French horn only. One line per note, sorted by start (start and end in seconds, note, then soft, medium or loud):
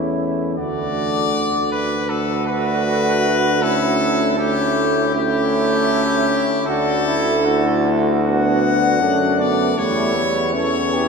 0.00 0.58 C#4 medium
0.58 1.81 D4 medium
2.11 3.59 D4 medium
3.62 4.37 C#4 medium
4.38 5.13 C#4 medium
5.16 6.65 C#4 loud
6.68 7.46 D4 loud
7.44 8.23 E4 medium
8.24 9.02 D4 medium
9.00 9.41 C#4 loud
9.39 9.79 B3 medium
9.77 10.17 A3 loud
10.16 10.55 B3 loud
10.54 11.08 C#4 medium